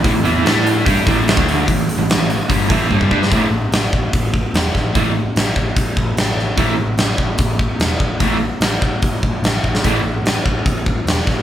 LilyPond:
<<
  \new Staff \with { instrumentName = "Distorted electric guitar" } { \clef bass \time 4/4 \key c \lydian \tempo 4 = 147 <a, e>16 <a, e>16 <e b e'>8 <a e' a'>4 <g d' g'>8 <a, e a>8. <d a d'>8. | <a, e>8 r16 <a, e>8 <a, e>8 r16 <g, d g>8 <a, e a>8 <g, d g>8 <g d' g'>8 | <a, e a>8 r2. r8 | <a, e a>8 r2. r8 |
<a, e a>8 r2. r8 | <a, e a>8 r2. r8 | <a, e a>8 r2. r8 | }
  \new Staff \with { instrumentName = "Overdriven electric guitar" } { \clef bass \time 4/4 \key c \lydian <a, e>16 <a, e>16 <e b e'>8 <a e' a'>4 <g d' g'>8 <a, e a>8. <d a d'>8. | <a, e>8 r16 <a, e>8 <a, e>8 r16 <g, d g>8 <a, e a>8 <g, d g>8 <g d' g'>8 | <a, e a>8 r2. r8 | <a, e a>8 r2. r8 |
<a, e a>8 r2. r8 | <a, e a>8 r2. r8 | <a, e a>8 r2. r8 | }
  \new Staff \with { instrumentName = "Picked electric bass" } { \clef bass \time 4/4 \key c \lydian a,,16 a,,16 e,8 a,4 g,8 a,,8. d,8. | a,,8 r16 a,,8 a,,8 r16 g,,8 a,,8 g,,8 g,8 | a,,8 a,,8 a,,8 a,,8 a,,4 e,,8 a,,8 | a,,4 a,,8 a,,8 a,,8 a,,8 a,,8 a,,8 |
a,,8 a,,8 a,,8 a,,8 a,,4 e,,8 a,,8 | a,,4 a,,8 a,,8 a,,8 a,,8 a,,8 a,,8 | a,,8 a,,8 a,,8 a,,8 a,,4 e,,8 a,,8 | }
  \new DrumStaff \with { instrumentName = "Drums" } \drummode { \time 4/4 <hho bd>8 hho8 <hho sn>8 hho8 <hho bd>8 <hho bd>8 <hho sn>16 bd16 hho8 | <hho bd>8 hho8 <hho sn>8 hho8 <hho bd>8 <hho bd>8 bd16 bd16 bd16 sn16 | <hho bd>4 <hho sn>8 bd8 <hho bd>8 bd8 <hho sn>8 <bd sn>8 | <hho bd>4 <hho sn>8 bd8 <hho bd>8 bd8 <hho sn>8 sn8 |
<hho bd>4 <hho sn>8 bd8 <hho bd>8 bd8 <hho sn>8 bd8 | <hho bd>4 <hho sn>8 bd8 <hho bd>8 bd8 <hho sn>8 bd16 sn16 | <hho bd>4 <hho sn>8 bd8 <hho bd>8 bd8 <hho sn>8 <bd sn>8 | }
>>